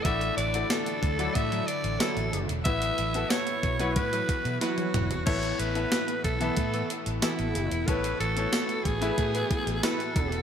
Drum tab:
CC |----------------|----------------|x---------------|----------------|
HH |xxxxxxxxxxxxxxxx|xxxxxxxxxxxxxxxx|-xxxxxxxxxxxxxxx|xxxxxxxxxxxxxxxx|
TB |----x-------x---|----x-----------|----x-------x---|----x-------x---|
SD |----o-------o---|----o-------o---|----o-------o---|----o-------o---|
T1 |----------------|-------------o--|----------------|----------------|
T2 |----------------|--------------o-|----------------|----------------|
FT |----------------|---------------o|----------------|----------------|
BD |o-----o-o-------|o-----o-o-o-----|o-----o-o-------|o-----o-o-o---o-|